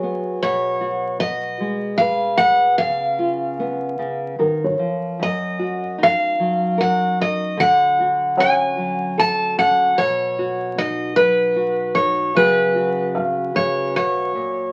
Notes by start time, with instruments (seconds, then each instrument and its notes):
Already playing: nylon-string guitar F#3 F#4 G#4, felt piano B4 C#5
0.03 nylon-string guitar B3
0.42 nylon-string guitar B2, steel-string acoustic guitar C#5
0.81 nylon-string guitar F#4
1.20 nylon-string guitar B3, steel-string acoustic guitar D#5
1.60 nylon-string guitar G#3
1.98 nylon-string guitar B4, steel-string acoustic guitar F5
2.38 nylon-string guitar B3, steel-string acoustic guitar F#5
2.78 nylon-string guitar C#3, steel-string acoustic guitar F5
3.19 nylon-string guitar F4
3.59 nylon-string guitar B3
3.99 nylon-string guitar C#3
4.39 nylon-string guitar D#3, felt piano A#4
4.64 felt piano C#5
4.79 nylon-string guitar F3
5.19 nylon-string guitar F#2, steel-string acoustic guitar D#5
5.59 nylon-string guitar F#4
5.98 nylon-string guitar D#4
6.03 steel-string acoustic guitar F5
6.40 nylon-string guitar F#3
6.78 nylon-string guitar A#4, steel-string acoustic guitar F#5
7.20 nylon-string guitar D#4, steel-string acoustic guitar D#5
7.57 nylon-string guitar D3, steel-string acoustic guitar F#5
8.00 nylon-string guitar F#4
8.37 nylon-string guitar C#4, felt piano C#5 F#5, steel-string acoustic guitar G#5
8.77 nylon-string guitar F#3
9.18 nylon-string guitar A4, steel-string acoustic guitar A5
9.58 nylon-string guitar C#4, steel-string acoustic guitar F#5
9.98 nylon-string guitar B2, steel-string acoustic guitar C#5
10.39 nylon-string guitar F#4
10.78 nylon-string guitar D#4, steel-string acoustic guitar D#5
11.16 nylon-string guitar F#3, steel-string acoustic guitar B4
11.56 nylon-string guitar F#4
11.95 nylon-string guitar D#4, steel-string acoustic guitar C#5
12.35 nylon-string guitar C#3 F#3 B3 F#4 G#4, steel-string acoustic guitar B4
12.76 nylon-string guitar F#4
13.15 felt piano F5
13.54 nylon-string guitar C#3, steel-string acoustic guitar C#5
13.95 nylon-string guitar B2, steel-string acoustic guitar C#5
14.35 nylon-string guitar A#2